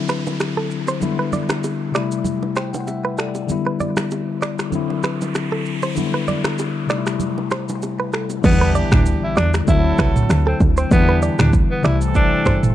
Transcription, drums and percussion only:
0.09 finger snap, cross-stick, high bongo, shaker
0.27 low bongo, shaker
0.40 finger snap, cross-stick, high bongo, shaker
0.71 shaker
0.87 high bongo, shaker
1.02 low conga, shaker
1.33 low bongo, low conga, shaker
1.49 finger snap, cross-stick, low bongo, shaker
1.64 high bongo, shaker
1.95 finger snap, cross-stick, shaker
2.12 shaker
2.24 low conga, shaker
2.43 low bongo
2.56 finger snap, cross-stick, high bongo, shaker
2.74 low bongo, shaker
2.88 high bongo, shaker
3.18 finger snap, cross-stick, shaker
3.35 high bongo, shaker
3.49 low conga, shaker
3.80 low bongo, low conga, shaker
3.97 finger snap, cross-stick, low bongo, shaker
4.11 high bongo, shaker
4.42 finger snap, cross-stick, shaker
4.59 finger snap, cross-stick, shaker
4.72 low conga, shaker
4.90 low bongo
5.03 finger snap, cross-stick, high bongo, shaker
5.21 low bongo, shaker
5.35 finger snap, cross-stick, high bongo, shaker
5.65 shaker
5.82 high bongo, shaker
5.97 low conga, shaker
6.28 low bongo, low conga, shaker
6.44 finger snap, cross-stick, low bongo, shaker
6.59 high bongo, shaker
6.90 finger snap, cross-stick, shaker
7.07 finger snap, cross-stick, shaker
7.20 low conga, shaker
7.38 low bongo
7.51 finger snap, cross-stick, high bongo, shaker
7.69 low bongo, shaker
7.82 high bongo, shaker
8.13 finger snap, cross-stick, shaker
8.30 high bongo, shaker
8.44 kick, crash, shaker
8.75 shaker
8.92 finger snap, kick, cross-stick, mid tom, shaker
9.06 shaker
9.37 finger snap, cross-stick, shaker
9.54 finger snap, cross-stick, shaker
9.68 kick, shaker
9.98 finger snap, kick, cross-stick, shaker
10.16 mid tom, shaker
10.30 finger snap, cross-stick, shaker
10.60 kick, shaker
10.77 shaker
10.91 kick, shaker
11.22 shaker
11.39 finger snap, cross-stick, mid tom, shaker
11.53 kick, shaker
11.84 finger snap, cross-stick, shaker
12.01 shaker
12.15 kick, shaker
12.46 finger snap, kick, cross-stick, shaker
12.63 mid tom, shaker

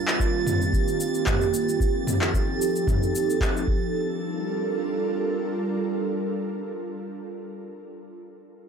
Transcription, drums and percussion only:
0.08 clap, shaker
0.20 kick, shaker
0.47 mid tom, shaker
0.62 shaker
0.73 kick, shaker
0.88 shaker
1.00 shaker
1.15 shaker
1.26 kick, clap, mid tom, shaker
1.41 shaker
1.54 shaker
1.69 shaker
1.80 kick, shaker
2.07 mid tom, shaker
2.22 clap, shaker
2.34 kick, shaker
2.62 shaker
2.76 shaker
2.87 kick, mid tom, shaker
3.03 shaker
3.15 shaker
3.30 shaker
3.41 kick, clap, shaker
3.57 shaker
3.68 kick

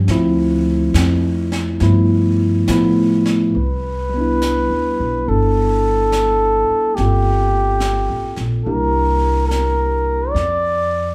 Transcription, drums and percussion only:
0.08 brush sweep, snare
0.94 snare, hi-hat pedal
1.52 snare
1.80 brush sweep, snare
2.68 snare, hi-hat pedal
3.26 snare
3.53 brush sweep
4.42 snare, hi-hat pedal
5.28 brush sweep
6.12 snare, hi-hat pedal
6.97 brush sweep, snare
7.80 snare, hi-hat pedal
8.36 snare
8.65 brush sweep
9.51 snare, hi-hat pedal
10.36 brush sweep, snare

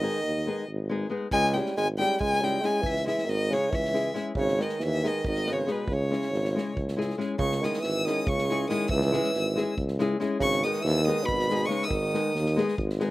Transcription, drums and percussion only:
1.31 kick
1.45 snare
1.55 snare
1.66 snare
1.77 snare
2.00 snare
2.21 kick
2.33 snare
2.44 snare
2.62 snare
2.83 kick
2.96 snare
3.07 snare
3.18 snare
3.29 snare
3.53 snare
3.73 kick
3.85 snare
3.95 snare
4.15 snare
4.35 kick
4.48 snare
4.60 snare
4.69 snare
4.80 snare
5.04 snare
5.25 kick
5.35 snare
5.46 snare
5.67 snare
5.88 kick
6.12 snare
6.22 snare
6.34 snare
6.45 snare
6.58 snare
6.77 kick
6.88 snare
7.00 snare
7.10 snare
7.20 snare
7.39 kick
7.52 snare
7.63 snare
7.73 snare
7.83 snare
8.07 snare
8.27 kick
8.38 snare
8.49 snare
8.69 snare
8.89 kick
9.01 snare
9.13 snare
9.23 snare
9.34 snare
9.57 snare
9.78 kick
9.88 snare
9.99 snare
10.20 snare
10.41 kick
10.52 snare
10.63 snare
10.73 snare
10.85 snare
11.08 snare
11.29 kick
11.39 snare
11.50 snare
11.70 snare
11.91 kick
12.14 snare
12.35 snare
12.46 snare
12.57 snare
12.68 snare
12.78 kick
12.89 snare
13.00 snare

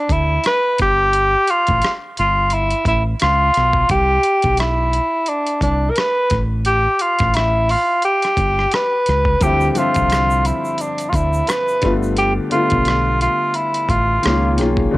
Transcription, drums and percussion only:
0.09 kick, closed hi-hat
0.44 cross-stick, closed hi-hat
0.78 kick, cross-stick, closed hi-hat
1.13 closed hi-hat
1.48 closed hi-hat
1.67 kick, closed hi-hat
1.82 cross-stick, closed hi-hat
2.17 closed hi-hat
2.50 closed hi-hat
2.70 closed hi-hat
2.85 kick, closed hi-hat
3.20 cross-stick, closed hi-hat
3.54 cross-stick, closed hi-hat
3.73 kick
3.89 kick, closed hi-hat
4.23 closed hi-hat
4.42 kick, closed hi-hat
4.57 cross-stick, closed hi-hat
4.93 closed hi-hat
5.26 closed hi-hat
5.47 closed hi-hat
5.61 kick, closed hi-hat
5.96 cross-stick, closed hi-hat
6.30 kick, cross-stick, closed hi-hat
6.65 closed hi-hat
6.99 closed hi-hat
7.19 kick, cross-stick, closed hi-hat
7.34 cross-stick, closed hi-hat
7.69 open hi-hat
8.02 closed hi-hat
8.22 cross-stick, closed hi-hat
8.37 kick, closed hi-hat
8.59 cross-stick
8.71 cross-stick, closed hi-hat
9.06 cross-stick, closed hi-hat
9.25 kick
9.41 kick, closed hi-hat, shaker
9.61 shaker
9.75 closed hi-hat, shaker
9.94 kick, closed hi-hat, shaker
10.10 finger snap, cross-stick, closed hi-hat, shaker
10.30 shaker
10.45 closed hi-hat, shaker
10.65 shaker
10.78 closed hi-hat, shaker
10.98 closed hi-hat, shaker
11.13 kick, closed hi-hat, shaker
11.33 shaker
11.47 finger snap, cross-stick, closed hi-hat, shaker
11.68 shaker
11.82 kick, cross-stick, closed hi-hat
12.03 shaker
12.17 closed hi-hat
12.51 closed hi-hat
12.70 kick, closed hi-hat
12.85 cross-stick, closed hi-hat
13.21 closed hi-hat
13.54 closed hi-hat
13.74 closed hi-hat
13.89 kick, closed hi-hat
14.23 cross-stick, closed hi-hat
14.58 cross-stick, closed hi-hat
14.77 kick

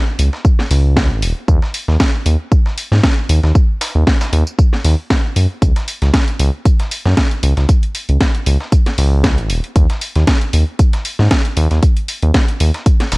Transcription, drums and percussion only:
0.19 open hi-hat, tambourine
0.33 snare
0.45 kick, tambourine
0.59 snare
0.71 open hi-hat
0.97 kick, snare, tambourine
1.22 open hi-hat, tambourine
1.48 kick, tambourine
1.62 snare
1.74 open hi-hat, tambourine
1.88 snare
2.00 kick, snare, tambourine
2.26 open hi-hat, tambourine
2.52 kick, tambourine
2.66 snare
2.78 open hi-hat, tambourine
2.92 snare
3.03 kick, snare, tambourine
3.29 open hi-hat, tambourine
3.43 snare
3.55 kick, tambourine
3.81 snare, open hi-hat, tambourine
4.07 kick, snare, tambourine
4.21 snare, tambourine
4.33 open hi-hat
4.47 tambourine
4.59 kick, tambourine
4.73 snare
4.84 open hi-hat
5.10 kick, snare, tambourine
5.36 open hi-hat, tambourine
5.62 kick, closed hi-hat, tambourine
5.76 snare, closed hi-hat
5.88 open hi-hat, tambourine
6.02 snare, closed hi-hat
6.14 kick, snare, closed hi-hat, tambourine
6.28 closed hi-hat
6.40 open hi-hat, tambourine
6.65 kick, closed hi-hat, tambourine
6.79 snare, closed hi-hat
6.91 open hi-hat, tambourine
7.05 snare
7.17 kick, snare, closed hi-hat, tambourine
7.31 closed hi-hat
7.43 open hi-hat, tambourine
7.57 snare, closed hi-hat
7.69 kick, closed hi-hat, tambourine
7.83 closed hi-hat
7.95 open hi-hat, tambourine
8.09 closed hi-hat
8.21 kick, snare, closed hi-hat, tambourine
8.35 closed hi-hat
8.46 open hi-hat, tambourine
8.61 snare
8.72 kick, closed hi-hat, tambourine
8.86 snare, closed hi-hat
8.98 open hi-hat
9.24 kick, snare, closed hi-hat, tambourine
9.38 closed hi-hat
9.50 open hi-hat, tambourine
9.64 closed hi-hat
9.76 kick, closed hi-hat, tambourine
9.90 snare, closed hi-hat
10.01 open hi-hat, tambourine
10.16 snare, closed hi-hat
10.27 kick, snare, closed hi-hat, tambourine
10.41 closed hi-hat
10.53 open hi-hat, tambourine
10.79 kick, closed hi-hat, tambourine
10.93 snare, closed hi-hat
11.05 open hi-hat, tambourine
11.19 snare
11.31 kick, snare, closed hi-hat, tambourine
11.45 closed hi-hat
11.57 open hi-hat, tambourine
11.71 snare, closed hi-hat
11.83 kick, closed hi-hat, tambourine
11.97 closed hi-hat
12.08 open hi-hat, tambourine
12.23 closed hi-hat
12.34 kick, snare, closed hi-hat, tambourine
12.48 closed hi-hat
12.60 open hi-hat, tambourine
12.74 snare, closed hi-hat
12.86 kick, closed hi-hat, tambourine
13.00 snare, closed hi-hat
13.12 snare, open hi-hat, tambourine

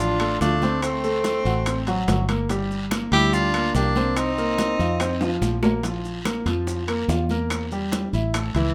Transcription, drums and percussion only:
0.20 high conga, high timbale, claves, maracas
0.41 high bongo, low bongo, short guiro, maracas
0.62 high bongo, high conga, short guiro, maracas
0.82 high bongo, high timbale, long guiro, claves, maracas
1.04 high bongo, high conga, maracas
1.24 high bongo, high conga, high timbale, short guiro, maracas
1.45 high conga, short guiro, maracas
1.66 high bongo, high conga, high timbale, long guiro, claves, maracas
1.87 high conga, high timbale, maracas
2.08 high bongo, low bongo, high conga, high timbale, low timbale, short guiro, maracas
2.29 high bongo, high conga, high timbale, short guiro, claves, maracas
2.49 high bongo, high conga, high timbale, long guiro, maracas
2.71 high bongo, high conga, maracas
2.91 high bongo, high conga, high timbale, short guiro, claves, maracas
3.12 high timbale, short guiro, maracas
3.33 high bongo, long guiro, maracas
3.54 high bongo, high conga, high timbale, claves, maracas
3.75 high bongo, low bongo, high conga, short guiro, maracas
3.96 high bongo, high conga, short guiro, maracas
4.16 high bongo, high conga, high timbale, long guiro, claves, maracas
4.38 high bongo, high conga, maracas
4.58 high bongo, high conga, high timbale, short guiro, maracas
4.79 high conga, short guiro, maracas
5.00 high bongo, high conga, high timbale, long guiro, claves, maracas
5.21 high conga, high timbale, maracas
5.42 high bongo, low bongo, high conga, short guiro, maracas
5.63 high bongo, high conga, low timbale, short guiro, claves, maracas
5.83 high bongo, high timbale, long guiro, maracas
6.04 high bongo, high conga, maracas
6.25 high bongo, high conga, high timbale, short guiro, claves, maracas
6.46 high timbale, short guiro, maracas
6.67 high bongo, high conga, long guiro, maracas
6.88 high bongo, high conga, high timbale, claves, maracas
7.09 high bongo, low bongo, short guiro, maracas
7.29 high bongo, high conga, short guiro, maracas
7.50 high bongo, high conga, high timbale, long guiro, claves, maracas
7.72 high bongo, high conga, maracas
7.92 high bongo, high conga, high timbale, short guiro, maracas
8.14 high conga, short guiro, maracas
8.34 high bongo, high conga, high timbale, long guiro, claves, maracas
8.55 high conga, high timbale, maracas

